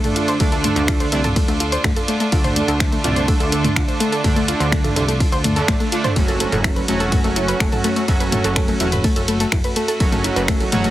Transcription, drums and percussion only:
0.04 closed hi-hat, mid tom
0.16 closed hi-hat
0.28 closed hi-hat
0.40 kick, closed hi-hat, ride
0.52 closed hi-hat
0.64 closed hi-hat, mid tom
0.76 closed hi-hat
0.88 finger snap, kick, closed hi-hat, ride
1.00 closed hi-hat
1.12 closed hi-hat
1.24 closed hi-hat, mid tom
1.36 kick, closed hi-hat, ride
1.48 closed hi-hat
1.60 closed hi-hat
1.72 closed hi-hat
1.84 finger snap, kick, closed hi-hat, mid tom, ride
1.96 closed hi-hat
2.08 closed hi-hat
2.20 closed hi-hat
2.32 kick, closed hi-hat, ride
2.44 closed hi-hat, mid tom
2.56 closed hi-hat
2.68 closed hi-hat
2.80 finger snap, kick, closed hi-hat, ride
2.92 closed hi-hat
3.04 closed hi-hat, mid tom
3.16 closed hi-hat
3.28 kick, closed hi-hat, ride
3.40 closed hi-hat
3.52 closed hi-hat
3.64 closed hi-hat, mid tom
3.76 finger snap, kick, closed hi-hat, ride
3.88 closed hi-hat
4.00 closed hi-hat
4.12 closed hi-hat
4.24 kick, closed hi-hat, mid tom, ride
4.36 closed hi-hat
4.48 closed hi-hat
4.60 closed hi-hat
4.72 finger snap, kick, closed hi-hat, ride
4.84 closed hi-hat, mid tom
4.96 closed hi-hat
5.08 closed hi-hat
5.20 kick, closed hi-hat, ride
5.32 closed hi-hat
5.44 closed hi-hat, mid tom
5.56 closed hi-hat
5.68 finger snap, kick, closed hi-hat, ride
5.80 closed hi-hat
5.92 closed hi-hat
6.04 closed hi-hat, mid tom
6.16 kick, closed hi-hat, ride
6.28 closed hi-hat
6.40 closed hi-hat
6.52 closed hi-hat, mid tom
6.64 finger snap, kick, closed hi-hat, ride
6.76 closed hi-hat
6.88 closed hi-hat
7.00 closed hi-hat
7.12 kick, closed hi-hat, mid tom, ride
7.24 closed hi-hat
7.36 closed hi-hat
7.48 closed hi-hat
7.60 finger snap, kick, closed hi-hat, ride
7.72 closed hi-hat, mid tom
7.84 closed hi-hat
7.96 closed hi-hat
8.08 kick, closed hi-hat, ride
8.20 closed hi-hat
8.32 closed hi-hat, mid tom
8.44 closed hi-hat
8.56 finger snap, kick, closed hi-hat, ride
8.68 closed hi-hat
8.80 closed hi-hat
8.92 closed hi-hat, mid tom
9.04 kick, closed hi-hat, ride
9.16 closed hi-hat
9.28 closed hi-hat
9.40 closed hi-hat
9.52 finger snap, kick, closed hi-hat, mid tom, ride
9.64 closed hi-hat
9.76 closed hi-hat
9.88 closed hi-hat
10.00 kick, closed hi-hat, ride
10.12 closed hi-hat, mid tom
10.24 closed hi-hat
10.36 closed hi-hat
10.48 finger snap, kick, closed hi-hat, ride
10.60 closed hi-hat
10.72 closed hi-hat, mid tom
10.84 closed hi-hat

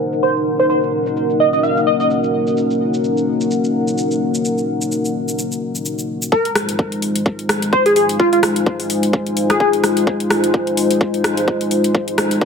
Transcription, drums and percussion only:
0.13 shaker
0.23 shaker
0.36 shaker
0.60 shaker
0.70 shaker
0.83 shaker
1.06 shaker
1.17 shaker
1.30 shaker
1.53 shaker
1.64 shaker
1.77 shaker
2.00 shaker
2.10 shaker
2.24 shaker
2.47 shaker
2.57 shaker
2.71 shaker
2.94 shaker
3.04 shaker
3.17 shaker
3.41 shaker
3.51 shaker
3.64 shaker
3.88 shaker
3.98 shaker
4.11 shaker
4.35 shaker
4.45 shaker
4.58 shaker
4.81 shaker
4.92 shaker
5.05 shaker
5.28 shaker
5.39 shaker
5.52 shaker
5.75 shaker
5.85 shaker
5.99 shaker
6.22 shaker
6.32 kick
6.45 closed hi-hat
6.55 cross-stick, open hi-hat
6.69 closed hi-hat
6.79 kick
6.92 closed hi-hat
7.02 open hi-hat
7.16 closed hi-hat
7.26 kick
7.39 closed hi-hat
7.49 cross-stick, open hi-hat
7.62 closed hi-hat
7.73 kick
7.86 closed hi-hat
7.96 open hi-hat
8.09 closed hi-hat
8.20 kick
8.33 closed hi-hat
8.43 cross-stick, open hi-hat
8.56 closed hi-hat
8.66 kick
8.80 open hi-hat
8.90 open hi-hat
9.03 closed hi-hat
9.13 kick
9.27 closed hi-hat
9.37 open hi-hat
9.50 cross-stick, closed hi-hat
9.60 kick
9.73 closed hi-hat
9.84 cross-stick, open hi-hat
9.97 closed hi-hat
10.07 kick
10.20 closed hi-hat
10.30 cross-stick, open hi-hat
10.44 closed hi-hat
10.54 kick
10.67 closed hi-hat
10.77 open hi-hat
10.91 closed hi-hat
11.01 kick
11.14 closed hi-hat
11.24 cross-stick, open hi-hat
11.37 closed hi-hat
11.48 kick
11.61 closed hi-hat
11.71 open hi-hat
11.84 closed hi-hat
11.95 kick
12.08 closed hi-hat
12.18 cross-stick, open hi-hat
12.31 closed hi-hat
12.41 kick

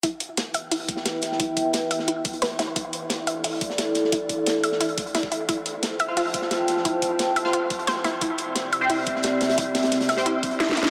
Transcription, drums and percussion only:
0.03 kick, closed hi-hat
0.20 closed hi-hat
0.37 snare, closed hi-hat
0.54 closed hi-hat
0.71 closed hi-hat, open hi-hat
0.89 kick, closed hi-hat
0.96 snare
1.05 snare, closed hi-hat
1.22 snare, closed hi-hat
1.32 snare
1.40 kick, closed hi-hat
1.57 kick, closed hi-hat
1.73 snare, closed hi-hat
1.91 closed hi-hat
1.99 snare
2.08 closed hi-hat
2.25 kick, closed hi-hat
2.33 closed hi-hat
2.42 snare, closed hi-hat
2.51 snare
2.59 snare, closed hi-hat
2.76 kick, closed hi-hat
2.93 closed hi-hat
3.10 snare, closed hi-hat
3.27 closed hi-hat
3.44 closed hi-hat, open hi-hat
3.61 kick, closed hi-hat
3.70 snare
3.78 snare, closed hi-hat
3.95 snare, closed hi-hat
4.04 snare
4.12 kick, closed hi-hat
4.29 kick, closed hi-hat
4.46 snare, closed hi-hat
4.63 closed hi-hat
4.72 snare
4.80 closed hi-hat
4.89 closed hi-hat
4.98 kick, closed hi-hat
5.07 closed hi-hat
5.15 snare, closed hi-hat
5.23 kick, snare
5.32 closed hi-hat
5.49 kick, closed hi-hat
5.66 closed hi-hat
5.83 snare, closed hi-hat
5.99 closed hi-hat
6.17 closed hi-hat, open hi-hat
6.34 kick, closed hi-hat
6.42 snare
6.51 snare, closed hi-hat
6.68 snare, closed hi-hat
6.77 snare
6.85 kick, closed hi-hat
7.02 kick, closed hi-hat
7.19 snare, closed hi-hat
7.36 closed hi-hat
7.45 snare
7.53 closed hi-hat
7.70 kick, closed hi-hat
7.79 closed hi-hat
7.87 snare, closed hi-hat
7.96 snare
8.04 snare, closed hi-hat
8.21 kick, closed hi-hat
8.38 closed hi-hat
8.55 snare, closed hi-hat
8.72 closed hi-hat
8.90 closed hi-hat, open hi-hat
9.06 kick, closed hi-hat
9.15 snare
9.23 snare, closed hi-hat
9.41 snare, closed hi-hat
9.49 snare, closed hi-hat
9.58 kick, closed hi-hat
9.75 kick, snare, closed hi-hat
9.83 snare, closed hi-hat
9.92 snare, closed hi-hat
10.01 snare, closed hi-hat
10.09 snare, closed hi-hat
10.17 snare, closed hi-hat
10.26 closed hi-hat
10.43 kick, closed hi-hat
10.51 closed hi-hat
10.60 snare, closed hi-hat
10.69 kick, snare, closed hi-hat
10.71 snare
10.77 snare, closed hi-hat
10.83 snare
10.86 snare, closed hi-hat

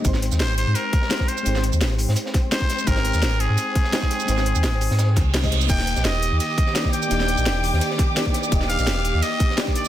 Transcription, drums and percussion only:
0.05 kick, closed hi-hat, shaker
0.14 snare, shaker
0.22 closed hi-hat
0.32 snare, shaker
0.40 snare, closed hi-hat, shaker
0.58 closed hi-hat
0.75 closed hi-hat, shaker
0.93 kick, closed hi-hat
1.02 snare
1.11 snare, closed hi-hat, shaker
1.20 kick, snare
1.28 closed hi-hat, shaker
1.38 shaker
1.46 closed hi-hat, shaker
1.55 snare, shaker
1.64 closed hi-hat
1.73 closed hi-hat, shaker
1.81 snare, closed hi-hat, shaker
1.98 closed hi-hat, open hi-hat
2.09 snare
2.16 closed hi-hat, shaker
2.26 snare
2.34 kick, snare, closed hi-hat
2.52 snare, closed hi-hat, shaker
2.61 kick
2.69 snare, closed hi-hat, shaker
2.79 shaker
2.87 kick, closed hi-hat, shaker
2.96 snare, shaker
3.05 closed hi-hat
3.14 snare, shaker
3.22 snare, closed hi-hat, shaker
3.40 closed hi-hat
3.58 closed hi-hat, shaker
3.75 kick, closed hi-hat
3.84 snare
3.93 snare, closed hi-hat, shaker
4.02 kick, snare
4.11 closed hi-hat, shaker
4.20 shaker
4.28 closed hi-hat, shaker
4.38 snare, shaker
4.46 closed hi-hat
4.55 closed hi-hat, shaker
4.63 snare, closed hi-hat, shaker
4.81 closed hi-hat, open hi-hat, shaker
4.91 snare
4.99 snare, closed hi-hat, shaker
5.16 kick, snare, closed hi-hat, shaker
5.34 snare, closed hi-hat, shaker
5.43 kick, snare, closed hi-hat
5.52 snare, closed hi-hat, shaker
5.61 snare, shaker
5.69 kick, closed hi-hat, ride bell, crash, shaker
5.79 snare, shaker
5.87 closed hi-hat
5.96 snare, shaker
6.05 snare, closed hi-hat, ride bell, shaker
6.23 closed hi-hat
6.40 closed hi-hat, ride bell, shaker
6.58 kick, closed hi-hat
6.66 snare
6.75 snare, closed hi-hat, ride bell, shaker
6.85 kick, snare
6.93 closed hi-hat, shaker
7.02 shaker
7.11 closed hi-hat, ride bell, shaker
7.20 snare, shaker
7.28 closed hi-hat
7.37 closed hi-hat, shaker
7.46 snare, closed hi-hat, ride bell, shaker
7.64 closed hi-hat, open hi-hat
7.73 snare
7.81 closed hi-hat, ride bell, shaker
7.90 snare
7.99 kick, snare, closed hi-hat
8.16 snare, closed hi-hat, ride bell, shaker
8.26 kick
8.34 snare, closed hi-hat, shaker
8.44 shaker
8.52 kick, closed hi-hat, ride bell, shaker
8.61 snare, shaker
8.70 closed hi-hat
8.79 snare, shaker
8.86 snare, closed hi-hat, ride bell, shaker
9.04 closed hi-hat
9.22 closed hi-hat, ride bell, shaker
9.40 kick, closed hi-hat
9.50 snare
9.58 snare, closed hi-hat, ride bell, shaker
9.67 kick, snare
9.75 closed hi-hat, shaker
9.85 shaker

